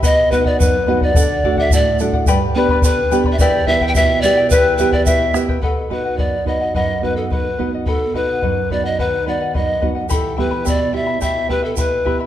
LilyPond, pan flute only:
\new Staff \with { instrumentName = "Pan flute" } { \time 2/4 \key b \phrygian \tempo 4 = 107 dis''8 b'16 d''16 b'8. d''16~ | d''8. e''16 d''8 r8 | r8 b'8 b'8. r32 e''32 | d''8 e''16. g''32 e''8 d''8 |
b'8 b'16 d''16 e''8. r16 | a'8 b'8 d''8 dis''8 | dis''8 b'16 a'16 b'8. r16 | a'8 b'4 d''16 dis''16 |
b'8 d''8 dis''8. r16 | a'8 b'8 d''8 e''8 | e''8 b'16 a'16 b'8. r16 | }